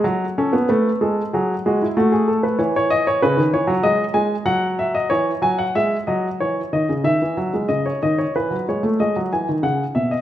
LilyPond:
<<
  \new Staff \with { instrumentName = "Grand piano" } { \time 4/4 \key fis \minor \tempo 4 = 94 fis'8 a'8 b'8 a'8 gis'8 fis'16 e'16 fis'16 gis'16 a'16 b'16 | cis''16 cis''16 dis''16 cis''16 b'8 cis''8 dis''8 gis''8 fis''8 e''16 dis''16 | cis''8 gis''16 fis''16 e''8 dis''8 cis''8 dis''8 e''4 | dis''16 cis''16 dis''16 cis''16 b'8 cis''8 dis''8 gis''8 fis''8 e''16 dis''16 | }
  \new Staff \with { instrumentName = "Grand piano" } { \clef bass \time 4/4 \key fis \minor fis8 cis'16 b16 a8 gis8 fis8 gis8 a4 | e4 cis16 dis16 e16 fis16 gis8 gis8 fis4 | e8 fis8 gis8 fis8 e8 dis16 cis16 dis16 e16 fis16 gis16 | cis8 dis8 e16 fis16 gis16 a16 gis16 fis16 e16 dis16 cis8 b,8 | }
>>